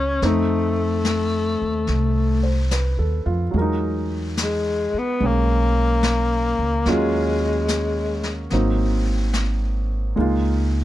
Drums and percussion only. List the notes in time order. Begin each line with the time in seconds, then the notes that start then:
0.22 brush sweep, snare
1.05 snare, hi-hat pedal
1.87 brush sweep, snare
2.71 snare, hi-hat pedal
3.55 brush sweep
4.37 snare, hi-hat pedal
5.20 brush sweep
6.03 snare, hi-hat pedal
6.86 brush sweep, snare
7.68 snare, hi-hat pedal
8.23 snare
8.50 brush sweep, snare
9.34 snare, hi-hat pedal
10.16 brush sweep